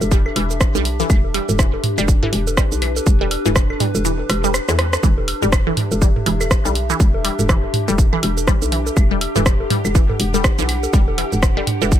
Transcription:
Already playing: D4 G4 E5
0.01 E1, low bongo, shaker
0.11 G3, kick, shaker
0.26 low bongo, high woodblock
0.36 E1 E3, open hi-hat, high woodblock
0.51 low bongo, shaker
0.61 kick, cross-stick, shaker
0.75 B1 G3, low bongo, shaker
0.85 open hi-hat
1.00 E3, low bongo, shaker
1.10 E1, kick, high woodblock, shaker
1.24 low bongo
1.34 G3, open hi-hat, high woodblock
1.49 E1, mid tom, low bongo, shaker
1.55 B4
1.59 E3, kick, cross-stick, shaker
1.74 low bongo
1.84 mid tom, open hi-hat
1.98 E1 G3, low bongo, high woodblock, shaker
2.08 kick, shaker
2.23 E3, mid tom, low bongo
2.33 E1, open hi-hat
2.47 low bongo, shaker
2.57 G3, kick, cross-stick, shaker
2.72 B1, low bongo, shaker
2.82 E3, open hi-hat, high woodblock
2.96 low bongo, shaker
3.06 E1, kick, shaker
3.21 G3, low bongo
3.31 open hi-hat, high woodblock
3.46 E1 E3, mid tom, low bongo, shaker
3.56 kick, cross-stick, shaker
3.70 low bongo, high woodblock
3.80 G3, mid tom, open hi-hat, shaker
3.95 E1, low bongo, shaker
4.05 E3, shaker
4.19 low bongo
4.30 E1, cross-stick, open hi-hat, high woodblock, shaker
4.44 G3, low bongo, shaker
4.54 cross-stick, high woodblock, shaker
4.69 E2 E3, cross-stick, low bongo, shaker
4.79 cross-stick, open hi-hat
4.93 cross-stick, low bongo, shaker
5.03 E1 E3 G4, kick, shaker
5.18 low bongo
5.28 open hi-hat, high woodblock
5.42 E1 G3, mid tom, low bongo, shaker
5.48 E5
5.52 kick, cross-stick, high woodblock, shaker
5.67 E3, low bongo
5.77 mid tom, open hi-hat
5.92 E1, low bongo, shaker
6.02 G3, kick, shaker
6.16 mid tom, low bongo
6.26 E1 E3, open hi-hat
6.41 low bongo, high woodblock, shaker
6.51 kick, cross-stick, shaker
6.65 B1 G3, low bongo, shaker
6.75 open hi-hat
6.90 E3, low bongo, shaker
7.00 E1, kick, shaker
7.14 low bongo
7.24 G3, open hi-hat, high woodblock
7.39 E1, mid tom, low bongo, shaker
7.49 E3, kick, cross-stick, shaker
7.64 low bongo
7.74 mid tom, open hi-hat
7.88 E1 G3, low bongo, shaker
7.98 kick, shaker
8.13 E3, low bongo, high woodblock
8.23 E1, open hi-hat, high woodblock
8.37 low bongo, shaker
8.47 G3, kick, cross-stick, shaker
8.62 B1, low bongo, shaker
8.72 E3, open hi-hat
8.86 low bongo, shaker
8.97 E1, kick, high woodblock, shaker
9.11 G3, low bongo
9.21 open hi-hat, high woodblock
9.36 E1 E3, mid tom, low bongo, shaker
9.41 F#5
9.46 kick, cross-stick, shaker
9.60 low bongo
9.70 G3, mid tom, open hi-hat
9.85 E1, low bongo, high woodblock, shaker
9.95 E3, kick, shaker
10.10 mid tom, low bongo
10.20 E1, open hi-hat
10.34 G3, low bongo, shaker
10.44 kick, cross-stick, shaker
10.59 B1 E3, low bongo, shaker
10.69 open hi-hat, high woodblock
10.83 low bongo, shaker
10.93 E1 G3, kick, shaker
11.08 low bongo
11.18 E3, open hi-hat, high woodblock
11.32 E1, mid tom, low bongo, shaker
11.43 kick, cross-stick, shaker
11.57 G3, low bongo, high woodblock
11.67 mid tom, open hi-hat
11.82 E1 E3, low bongo, shaker
11.92 kick, shaker

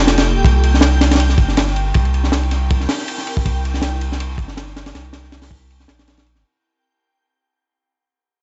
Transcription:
Already playing: F1 A#3 F4 G4 A4 G5 G6
0.07 snare, ride
0.18 snare, ride
0.36 D1
0.45 C2 C4 E4 A#4, kick, ride
0.63 ride
0.74 snare
0.81 snare, ride
1.01 snare, ride
1.11 snare, ride
1.15 snare, ride
1.20 ride
1.29 snare
1.38 G1, kick, ride
1.48 snare
1.57 snare, ride
1.68 snare
1.76 ride
1.94 C2, kick, ride
2.05 ride
2.14 ride
2.24 snare
2.32 snare, ride
2.43 ride
2.51 snare, ride
2.70 kick, ride
2.80 snare
2.89 snare, open hi-hat
2.98 snare
3.08 ride
3.18 snare
3.27 ride
3.37 kick
3.46 C2, kick, ride
3.65 ride
3.74 snare
3.82 snare, ride
4.01 ride
4.12 snare
4.20 ride
4.38 G1, kick, ride
4.48 snare
4.57 snare, ride
4.67 snare
4.76 snare, ride
4.86 snare, ride
4.95 C2, snare, ride
5.04 ride
5.13 snare, ride
5.24 snare
5.32 snare, ride
5.42 snare, open hi-hat
5.51 kick, ride
5.70 ride
5.80 snare
5.88 A#1, snare, ride
5.99 snare, ride
6.08 snare, ride
6.17 snare, ride
6.26 ride
6.35 G1, snare

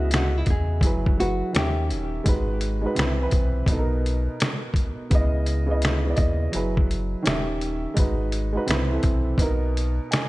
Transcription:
Already playing: C#2 C#3 B3 E4 D#5 E5
0.11 F#4, finger snap, snare, closed hi-hat
0.37 E4
0.46 E2, kick, closed hi-hat
0.50 G#4
0.81 F#1 F#3 E4 G#4, kick, closed hi-hat
0.87 B4
1.06 kick
1.16 F#3 E4 F#4 G#4
1.20 B4, closed hi-hat
1.53 D#2 D#3 C#4 G4, finger snap, snare, closed hi-hat
1.58 E5
1.91 D#1, closed hi-hat
2.24 G#1 G#3 D#4 F#4, kick, closed hi-hat
2.29 B4
2.61 closed hi-hat
2.82 G#3 D#4 F#4
2.86 B4
2.95 C2 C3 C4 E4, closed hi-hat
2.99 B4, finger snap, snare
3.19 E3 C4 E4
3.23 B4
3.31 B1, kick, closed hi-hat
3.66 B1 B2 B3, kick, closed hi-hat
3.71 D#4 A4
3.79 A#4
4.06 closed hi-hat
4.40 finger snap, snare, closed hi-hat
4.74 kick, closed hi-hat
5.10 C#2 C#3 B3 E4, kick, closed hi-hat
5.15 D#5
5.46 closed hi-hat
5.66 C#3 B3 E4
5.71 D#5
5.82 finger snap, snare, closed hi-hat
6.05 C#3 B3 E4
6.10 D5
6.16 D#2 D#5, kick, closed hi-hat
6.52 F#1 F#3 E4 G#4, closed hi-hat
6.56 B4
6.77 kick
6.91 closed hi-hat
7.22 D#1 D#3 C#4 G4, closed hi-hat
7.27 E5, finger snap, snare
7.61 closed hi-hat
7.94 G#1 G#3 D#4 F#4, kick, closed hi-hat
7.99 B4
8.32 closed hi-hat
8.53 G#3 D#4 F#4
8.57 B4
8.66 C2 C3 C4 E4, closed hi-hat
8.71 B4, finger snap, snare
8.89 E3 C4 E4
8.94 A4
9.03 B1, kick, closed hi-hat
9.38 B1 B2 B3 D#4, kick, closed hi-hat
9.42 A#4
9.77 closed hi-hat
10.11 D#5 G#5, finger snap, snare, closed hi-hat

